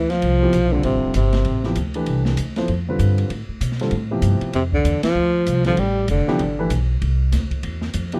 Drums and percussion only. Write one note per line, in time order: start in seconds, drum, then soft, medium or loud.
0.10 snare soft
0.10 ride soft
0.22 ride medium
0.53 hi-hat pedal soft
0.53 ride medium
0.83 ride medium
1.14 hi-hat pedal medium
1.14 ride medium
1.33 snare soft
1.33 ride soft
1.45 ride soft
1.63 snare soft
1.75 hi-hat pedal medium
1.75 ride medium
1.94 ride soft
2.06 ride medium
2.25 snare medium
2.37 hi-hat pedal medium
2.37 ride medium
2.56 snare soft
2.56 ride soft
2.68 ride soft
2.99 hi-hat pedal medium
2.99 ride medium
3.18 ride soft
3.30 ride medium
3.61 hi-hat pedal medium
3.61 ride medium
3.72 snare soft
3.79 snare soft
3.79 ride soft
3.91 ride soft
4.22 hi-hat pedal medium
4.22 ride medium
4.41 ride soft
4.53 ride medium
4.73 kick medium
4.85 hi-hat pedal medium
4.85 ride medium
5.03 snare medium
5.03 ride medium
5.46 hi-hat pedal medium
5.46 ride medium
5.64 snare soft
5.64 ride soft
5.77 ride medium
6.08 hi-hat pedal soft
6.08 ride medium
6.28 snare soft
6.39 ride medium
6.70 hi-hat pedal medium
6.70 ride medium
7.02 ride medium
7.32 snare soft
7.32 hi-hat pedal medium
7.32 ride medium
7.51 kick soft
7.51 ride soft
7.63 ride medium
7.82 snare soft
7.93 hi-hat pedal medium
7.93 ride medium
8.12 ride soft